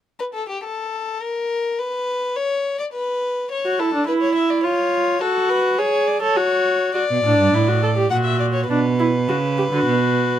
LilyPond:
<<
  \new Staff \with { instrumentName = "Violin" } { \time 3/4 \key b \minor \tempo 4 = 104 r16 b'16 a'16 g'16 a'4 ais'4 | b'4 cis''8. d''16 b'4 | cis''8 a'8 b'16 cis''16 e''16 d''16 cis''4 | a'8 b'8 cis''8 d''16 cis''4~ cis''16 |
d''2 fis''16 e''16 d''16 cis''16 | b'2. | }
  \new Staff \with { instrumentName = "Viola" } { \time 3/4 \key b \minor r2. | r2. | r16 fis'16 e'16 d'16 e'4 eis'4 | fis'4 gis'8. a'16 fis'4 |
fis'8 d'8 e'16 fis'16 a'16 g'16 fis'4 | d'8 e'8 fis'8 g'16 fis'4~ fis'16 | }
  \new Staff \with { instrumentName = "Cello" } { \clef bass \time 3/4 \key b \minor r2. | r2. | r2. | r2. |
r16 b,16 a,16 g,16 a,4 ais,4 | b,4 cis8. d16 b,4 | }
>>